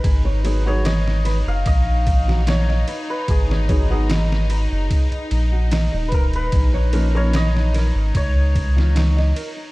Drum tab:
RD |x-x-x-x-x-x-x-x-|x-x-x-x-xxx-x-xx|x-x-x-x-x-x-x-x-|
SD |----ooo----ooo--|-o--oo------o---|----ooo----ooo--|
BD |o-------o-o-----|o-o-----o-----o-|o-------o-o-----|